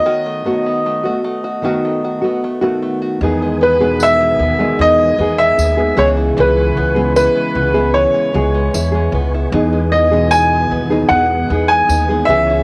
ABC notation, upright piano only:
X:1
M:4/4
L:1/16
Q:1/4=76
K:E
V:1 name="Upright piano"
d12 z4 | z2 B2 e4 d3 e3 c2 | B4 B4 c6 z2 | z2 d2 g4 f3 g3 e2 |]